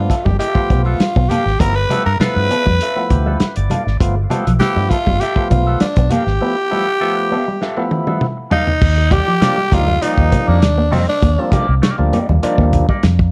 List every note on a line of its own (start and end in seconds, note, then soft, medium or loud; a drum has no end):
0.00 0.15 F3 medium
0.00 0.15 A3 medium
0.00 0.15 B3 medium
0.00 0.15 D4 medium
0.00 0.26 F4 medium
0.09 0.26 B3 medium
0.09 0.25 F4 medium
0.09 0.24 A4 medium
0.09 0.24 E5 medium
0.09 muted clean electric guitar stroke soft
0.09 kick medium
0.09 snare soft
0.09 closed hi-hat medium
0.09 muted conga soft
0.25 0.37 G1 medium
0.25 0.36 G3 medium
0.25 0.39 G4 medium
0.25 muted clean electric guitar stroke medium
0.25 kick medium
0.25 low conga medium
0.39 0.60 B3 medium
0.39 0.60 F4 medium
0.39 0.82 G4 loud
0.39 0.60 A4 medium
0.39 0.60 E5 medium
0.39 closed hi-hat medium
0.39 muted conga soft
0.55 1.05 F3 medium
0.55 1.05 A3 medium
0.55 1.05 B3 medium
0.55 1.05 F4 medium
0.55 kick medium
0.70 0.95 B1 medium
0.70 0.82 B3 medium
0.70 muted clean electric guitar stroke soft
0.70 kick medium
0.70 closed hi-hat medium
0.70 high conga medium
0.84 1.01 B3 medium
0.84 1.30 F4 medium
0.84 1.01 F4 medium
0.84 1.01 A4 medium
0.84 1.01 E5 medium
1.00 muted clean electric guitar stroke soft
1.00 snare loud
1.00 closed hi-hat medium
1.16 1.28 B1 medium
1.16 1.26 B3 medium
1.16 muted clean electric guitar stroke soft
1.16 kick loud
1.29 1.42 A#3 medium
1.29 1.51 B3 medium
1.29 1.47 F4 medium
1.29 1.61 G4 loud
1.29 1.46 A4 medium
1.29 1.46 F5 medium
1.29 closed hi-hat medium
1.29 high conga medium
1.29 low conga medium
1.46 1.57 G#1 medium
1.46 muted clean electric guitar stroke soft
1.46 snare soft
1.60 1.85 G1 loud
1.60 1.75 F3 medium
1.60 1.75 A3 medium
1.60 1.75 B3 medium
1.60 1.72 B3 medium
1.60 1.75 E4 medium
1.60 1.77 A#4 loud
1.60 kick loud
1.60 closed hi-hat medium
1.60 muted conga soft
1.75 2.05 B4 loud
1.89 2.05 F3 medium
1.89 2.02 G3 medium
1.89 2.05 A3 medium
1.89 2.05 B3 medium
1.89 2.11 B3 medium
1.89 2.11 F4 medium
1.89 2.05 G4 medium
1.89 2.11 A4 loud
1.89 2.12 E5 loud
1.89 closed hi-hat medium
1.89 high conga medium
2.06 2.18 G2 medium
2.06 2.19 A#4 loud
2.06 muted clean electric guitar stroke soft
2.20 2.56 F3 medium
2.20 2.56 A3 medium
2.20 2.41 B3 medium
2.20 2.56 B3 medium
2.20 2.56 E4 medium
2.20 2.36 F4 medium
2.20 2.36 A4 medium
2.20 3.66 B4 loud
2.20 2.36 E5 medium
2.20 muted fingered electric bass stroke medium
2.20 muted clean electric guitar stroke soft
2.20 snare loud
2.20 closed hi-hat medium
2.20 muted conga soft
2.20 high conga medium
2.36 2.48 G2 medium
2.36 muted clean electric guitar stroke soft
2.50 2.62 B3 medium
2.50 2.67 B3 medium
2.50 2.67 F4 medium
2.50 2.66 A4 medium
2.50 2.66 E5 medium
2.50 closed hi-hat medium
2.50 muted conga soft
2.66 2.78 F2 medium
2.66 2.76 G3 medium
2.66 muted clean electric guitar stroke soft
2.66 kick medium
2.66 low conga medium
2.81 3.01 B3 medium
2.81 3.02 F4 medium
2.81 3.02 A4 medium
2.81 3.02 E5 medium
2.81 closed hi-hat medium
2.96 3.46 F3 medium
2.96 3.46 A3 medium
2.96 3.06 B3 medium
2.96 3.46 B3 medium
2.96 3.46 E4 medium
3.10 3.35 D2 medium
3.10 3.38 G4 medium
3.10 muted clean electric guitar stroke soft
3.10 kick medium
3.10 closed hi-hat medium
3.10 muted conga soft
3.10 high conga medium
3.26 3.36 G3 medium
3.26 3.39 B3 soft
3.26 3.39 F4 medium
3.26 3.39 A4 soft
3.26 3.40 E5 medium
3.40 3.55 B4 medium
3.40 muted clean electric guitar stroke soft
3.40 muted fingered electric bass stroke soft
3.40 snare medium
3.40 closed hi-hat medium
3.40 muted conga soft
3.56 3.68 G1 medium
3.56 3.97 D5 medium
3.56 closed hi-hat medium
3.70 3.82 G3 medium
3.70 3.87 B3 medium
3.70 3.86 F4 medium
3.70 3.85 A4 medium
3.70 3.85 F5 medium
3.70 closed hi-hat medium
3.70 muted conga soft
3.70 high conga medium
3.70 low conga medium
3.86 3.98 G#1 medium
3.86 muted clean electric guitar stroke soft
3.86 snare soft
4.00 4.25 G1 loud
4.00 4.15 F3 medium
4.00 4.15 A3 medium
4.00 4.16 B3 medium
4.00 4.16 F4 medium
4.00 kick loud
4.00 closed hi-hat loud
4.00 muted conga soft
4.17 muted clean electric guitar stroke soft
4.30 4.45 F3 medium
4.30 4.42 G3 medium
4.30 4.46 A3 medium
4.30 4.51 B3 medium
4.30 4.46 B3 medium
4.30 4.51 F4 medium
4.30 4.46 G4 loud
4.30 4.51 A4 medium
4.30 4.52 E5 medium
4.30 closed hi-hat medium
4.30 muted conga soft
4.30 high conga medium
4.47 4.58 B1 medium
4.47 4.57 F3 medium
4.47 closed hi-hat medium
4.60 4.97 F3 medium
4.60 4.97 A3 medium
4.60 4.81 B3 medium
4.60 4.97 B3 medium
4.60 4.97 E4 medium
4.60 4.76 F4 medium
4.60 4.91 G4 loud
4.60 4.76 A4 medium
4.60 4.75 E5 medium
4.60 snare loud
4.60 closed hi-hat medium
4.60 muted conga soft
4.60 high conga medium
4.76 4.88 G2 medium
4.76 4.87 G3 medium
4.76 muted clean electric guitar stroke soft
4.90 5.07 B3 medium
4.90 5.22 F4 loud
4.90 5.07 F4 medium
4.90 5.06 A4 medium
4.90 5.06 E5 medium
4.90 muted clean electric guitar stroke soft
4.90 kick medium
4.90 closed hi-hat medium
5.06 5.18 G1 medium
5.06 5.17 G3 medium
5.06 kick medium
5.06 low conga medium
5.20 5.42 B3 medium
5.20 5.42 F4 medium
5.20 5.50 G4 loud
5.20 5.42 A4 medium
5.20 5.42 E5 medium
5.20 closed hi-hat medium
5.20 muted conga soft
5.36 5.86 F3 medium
5.36 5.86 A3 medium
5.36 5.86 B3 medium
5.36 5.87 F4 medium
5.36 kick medium
5.50 5.76 B1 loud
5.50 5.63 B3 medium
5.50 5.78 F4 medium
5.50 muted clean electric guitar stroke medium
5.50 kick medium
5.50 closed hi-hat medium
5.50 muted conga soft
5.50 high conga medium
5.67 5.82 B3 medium
5.67 5.82 F4 medium
5.67 5.82 A4 medium
5.67 5.82 E5 medium
5.80 6.13 D4 medium
5.80 muted fingered electric bass stroke soft
5.80 muted clean electric guitar stroke soft
5.80 snare medium
5.80 closed hi-hat medium
5.80 muted conga soft
5.96 6.08 B1 medium
5.96 6.08 B3 medium
5.96 muted clean electric guitar stroke soft
5.96 kick loud
5.96 closed hi-hat medium
6.10 6.23 A#3 medium
6.10 6.31 B3 medium
6.10 6.26 F4 medium
6.10 8.22 G4 loud
6.10 6.26 A4 loud
6.10 6.26 F5 loud
6.10 closed hi-hat medium
6.10 muted conga soft
6.10 high conga medium
6.10 low conga medium
6.26 6.38 G#1 medium
6.26 muted clean electric guitar stroke soft
6.26 snare soft
6.41 6.56 F3 medium
6.41 6.56 A3 medium
6.41 6.56 B3 medium
6.41 6.53 B3 loud
6.41 6.56 E4 medium
6.70 6.86 F3 medium
6.70 6.84 G3 medium
6.70 6.86 A3 medium
6.70 6.92 B3 medium
6.70 6.86 B3 medium
6.70 6.86 E4 medium
6.70 6.92 F4 medium
6.70 6.92 A4 medium
6.70 6.92 E5 medium
6.88 muted clean electric guitar stroke soft
7.00 7.37 F3 medium
7.00 7.37 A3 medium
7.00 7.22 B3 medium
7.00 7.37 B3 medium
7.00 7.17 F4 loud
7.00 7.37 G4 medium
7.00 7.17 A4 medium
7.00 7.16 E5 loud
7.00 muted clean electric guitar stroke soft
7.17 muted clean electric guitar stroke soft
7.32 7.43 B3 medium
7.32 7.48 B3 medium
7.32 7.47 F4 medium
7.32 7.47 A4 medium
7.32 7.47 E5 medium
7.48 7.58 G3 medium
7.48 muted clean electric guitar stroke soft
7.61 7.82 B3 medium
7.61 7.82 F4 loud
7.61 7.83 A4 medium
7.61 7.83 E5 medium
7.61 snare medium
7.77 8.27 F3 medium
7.77 8.27 A3 medium
7.77 8.27 B3 medium
7.77 7.88 B3 medium
7.77 8.27 E4 medium
7.91 muted clean electric guitar stroke soft
7.91 high tom medium
8.07 8.18 G3 medium
8.07 8.23 B3 soft
8.07 8.23 F4 soft
8.07 8.23 A4 medium
8.07 8.22 E5 medium
8.07 high tom medium
8.21 mid tom medium
8.37 muted clean electric guitar stroke soft
8.50 8.63 G3 medium
8.50 8.72 B3 medium
8.50 9.14 D#4 loud
8.50 8.66 F4 medium
8.50 8.66 A4 medium
8.50 8.66 F5 medium
8.50 floor tom loud
8.67 muted clean electric guitar stroke soft
8.67 floor tom medium
8.81 9.20 D#2 loud
8.81 kick loud
8.81 crash loud
8.81 muted conga soft
8.98 muted clean electric guitar stroke soft
9.10 9.23 G3 medium
9.10 9.32 A#3 medium
9.10 9.32 D#4 medium
9.10 9.32 G4 medium
9.10 9.75 G4 loud
9.10 9.33 D5 loud
9.10 kick loud
9.10 closed hi-hat medium
9.10 muted conga soft
9.10 high conga medium
9.28 9.38 F3 medium
9.41 9.57 F3 medium
9.41 9.57 G3 medium
9.41 9.62 A#3 medium
9.41 9.57 A#3 medium
9.41 9.57 D4 loud
9.41 9.57 D#4 medium
9.41 9.57 G4 medium
9.41 9.56 D5 medium
9.41 snare loud
9.41 closed hi-hat medium
9.41 high conga medium
9.58 9.68 G3 medium
9.58 muted clean electric guitar stroke soft
9.71 9.97 D2 medium
9.71 9.87 F3 medium
9.71 9.87 G3 medium
9.71 9.88 A#3 medium
9.71 9.87 A#3 medium
9.71 9.87 D#4 medium
9.71 10.04 F4 loud
9.71 9.87 G4 medium
9.71 9.86 D5 medium
9.71 muted clean electric guitar stroke soft
9.71 kick medium
9.71 snare soft
9.71 closed hi-hat medium
9.71 muted conga soft
9.71 low conga medium
9.87 9.98 G3 medium
9.87 muted clean electric guitar stroke soft
9.87 low conga medium
10.01 10.59 F3 medium
10.01 10.60 G3 medium
10.01 10.23 A#3 medium
10.01 10.59 A#3 medium
10.01 10.23 D#4 medium
10.01 10.60 D#4 medium
10.01 10.50 D#4 loud
10.01 10.23 G4 medium
10.01 10.23 D5 medium
10.01 closed hi-hat medium
10.01 muted conga soft
10.18 10.30 D#2 medium
10.18 kick medium
10.31 10.44 A#3 medium
10.31 muted clean electric guitar stroke soft
10.31 kick medium
10.31 closed hi-hat medium
10.31 high conga medium
10.47 10.62 F2 medium
10.47 10.63 A#3 medium
10.47 10.94 D4 loud
10.47 10.63 D#4 medium
10.47 10.63 G4 medium
10.47 10.63 D5 medium
10.62 10.92 D#2 medium
10.62 muted clean electric guitar stroke soft
10.62 snare loud
10.62 closed hi-hat medium
10.62 high conga medium
10.78 10.88 A#3 medium
10.78 muted clean electric guitar stroke soft
10.91 11.05 F2 medium
10.91 11.04 G3 medium
10.91 11.13 A#3 medium
10.91 11.09 C4 medium
10.91 11.08 D#4 medium
10.91 11.07 G4 loud
10.91 11.07 D#5 medium
10.91 open hi-hat medium
10.91 muted conga soft
10.91 high conga medium
10.91 low conga medium
11.08 11.65 D4 loud
11.08 muted clean electric guitar stroke soft
11.08 snare soft
11.22 11.36 D#2 loud
11.22 11.34 A#3 medium
11.22 kick loud
11.22 closed hi-hat medium
11.22 muted conga soft
11.38 11.67 F3 medium
11.38 11.67 G3 medium
11.38 11.67 A#3 medium
11.38 11.67 D4 loud
11.52 11.65 G3 medium
11.52 11.73 A#3 medium
11.52 11.73 D#4 medium
11.52 11.73 G4 loud
11.52 11.74 D5 loud
11.52 kick loud
11.52 closed hi-hat medium
11.52 muted conga soft
11.52 high conga medium
11.69 11.80 C2 medium
11.69 muted clean electric guitar stroke soft
11.82 12.03 A#3 medium
11.82 11.98 D#4 medium
11.82 11.98 G4 medium
11.82 11.97 D5 medium
11.82 muted clean electric guitar stroke soft
11.82 snare loud
11.82 closed hi-hat medium
11.82 muted conga soft
11.82 high conga medium
11.98 12.10 D2 medium
11.98 12.19 F3 loud
11.98 12.19 G3 medium
11.98 12.20 A#3 medium
11.98 12.20 D4 medium
11.98 muted clean electric guitar stroke soft
12.12 12.29 A#3 medium
12.12 12.25 A#3 medium
12.12 12.29 D#4 medium
12.12 12.29 G4 medium
12.12 12.28 D5 medium
12.12 closed hi-hat medium
12.12 low conga medium
12.29 12.41 D#2 loud
12.29 12.39 G3 medium
12.29 muted clean electric guitar stroke soft
12.29 low conga medium
12.43 12.87 F3 loud
12.43 12.87 G3 loud
12.43 12.64 A#3 medium
12.43 12.87 A#3 medium
12.43 12.87 D4 loud
12.43 12.64 D#4 medium
12.43 12.64 G4 medium
12.43 12.64 D5 medium
12.43 muted fingered electric bass stroke soft
12.43 closed hi-hat medium
12.43 muted conga soft
12.58 12.83 D#2 loud
12.58 12.69 A#3 medium
12.58 kick medium
12.73 muted clean electric guitar stroke soft
12.73 kick medium
12.73 closed hi-hat medium
12.73 muted conga soft
12.73 high conga medium
12.89 12.99 G3 medium
12.89 13.04 A#3 medium
12.89 13.04 D#4 medium
12.89 13.04 G4 medium
12.89 13.04 D5 medium
12.89 kick medium
13.03 13.31 F2 loud
13.03 snare medium
13.03 closed hi-hat medium
13.03 high conga medium
13.19 muted clean electric guitar stroke soft
13.19 kick loud